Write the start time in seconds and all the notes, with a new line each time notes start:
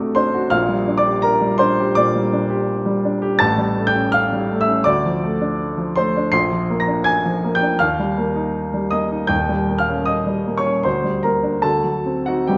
Already playing: C3 A3 D4 F#4 D5 D#5 F#5 G5 D6 D#6 F#6 G6
0.15 D4 C5 C6
0.34 F#4
0.50 A#1 A#2 F5 F6
0.69 G3
0.88 D4
0.98 D5 D6
1.06 G4
1.22 A#4 A#5
1.41 G3
1.58 D4 C5 C6
1.80 G4
1.95 A#2 D5 D6
2.16 G3
2.33 D4
2.50 G4
2.86 G3
3.05 D4
3.22 G4
3.39 A1 A2 A5 A6
3.58 G3
3.77 A3
3.87 G5 G6
3.96 C#4
4.12 F5 F6
4.33 G3
4.52 A3
4.61 E5 E6
4.68 C#4
4.84 D2 D5 D6
5.05 F3
5.24 A3
5.41 D4
5.78 F3
5.96 A3 C5 C6
6.17 D4
6.32 A#1 C6 C7
6.52 F3
6.70 A#3
6.80 A#5 A#6
6.88 D4
7.04 G#5 G#6
7.25 F3
7.44 A#3
7.55 G5 G6
7.63 D4
7.79 D#2 F5 F6
8.00 G3
8.18 A#3
8.36 D#4
8.74 G3
8.91 A#3 D#5 D#6
9.11 D#4
9.27 D#1 D#2 G5 G6
9.49 G3
9.69 A#3
9.78 F5 F6
9.88 C#4
10.05 D#5 D#6
10.26 G3
10.47 A#3
10.58 C#5 C#6
10.66 C#4
10.83 D2 C5 C6
11.04 G3
11.23 A#3 A#4 A#5
11.43 D4
11.62 D2 A4 A5
11.84 F#3
12.06 C4
12.26 D#4 F#4 F#5
12.47 G1 G2 G4 G5